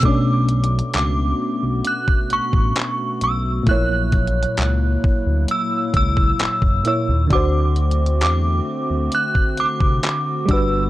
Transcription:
<<
  \new Staff \with { instrumentName = "Synth bell" } { \time 4/4 \key b \minor \tempo 4 = 66 d'''4 d'''4 fis'''8 cis'''4 e'''8 | fis'''2 e'''8 e'''4 e'''8 | d'''4 d'''4 fis'''8 d'''4 e'''8 | }
  \new Staff \with { instrumentName = "FM electric piano" } { \time 4/4 \key b \minor <b, a cis' d'>1 | <ais, a ais e' cis''>2.~ <ais, a ais e' cis''>8 <ais, ais e' cis''>8 | <d d' fis' c''>2.~ <d d' fis' c''>8 <g d' fis' b'>8 | }
  \new Staff \with { instrumentName = "Analog synth pad" } { \time 4/4 \key b \minor << { fis'1 | e'1 | <d fis'>1 | } \\ { <a b>1 | <fis ais>1 | <a c'>2.~ <a c'>8 <g b>8 | } >> }
  \new Staff \with { instrumentName = "Analog synth bass" } { \clef bass \time 4/4 \key b \minor b,,4 cis,8 r16 b,,16 r8 a,,16 a,,16 r8 b,,8 | ais,,4 cis,8 r16 d,16 r8 cis,8 fis,,16 fis,,16 r16 dis,16 | d,4 e,8 r16 d,16 r8 c,16 c,16 r8 g,,8 | }
  \new DrumStaff \with { instrumentName = "Drums" } \drummode { \time 4/4 \tuplet 3/2 { <hh bd>16 r16 r16 hh16 hh16 hh16 } <hc hh>4 hh16 bd16 hh16 bd16 <hc hh>8 hh8 | \tuplet 3/2 { <hh bd>16 r16 r16 <hh bd>16 hh16 hh16 } <hc hh>8 bd8 hh8 <hh bd>16 bd16 <hc hh>16 bd16 hh8 | \tuplet 3/2 { <hh bd>16 r16 r16 hh16 hh16 hh16 } <hc hh>4 hh16 bd16 hh16 bd16 <hc hh>8 <hh bd>8 | }
>>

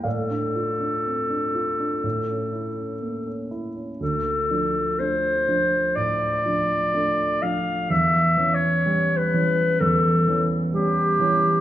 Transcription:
<<
  \new Staff \with { instrumentName = "Clarinet" } { \time 4/4 \key d \minor \tempo 4 = 62 a'2.~ a'8 r8 | a'4 c''4 d''4. f''8 | \tuplet 3/2 { e''4 cis''8~ cis''8 b'4 } a'8 r8 g'4 | }
  \new Staff \with { instrumentName = "Grand piano" } { \time 4/4 \key d \minor << { <a' d'' f''>2.~ <a' d'' f''>8 r8 | r1 | r1 | } \\ { a,16 d'16 f'16 d'16 c'16 d'16 f'16 d'16 a,16 cis'16 e'16 cis'16 bes16 cis'16 e'16 cis'16 | d,8 <f d'>8 <a d'>8 <f d'>8 a,8 <f d'>8 <a d'>8 <f d'>8 | e,8 <e cis'>8 <g cis'>8 <e cis'>8 e,8 <e cis'>8 <g cis'>8 <e cis'>8 | } >> }
>>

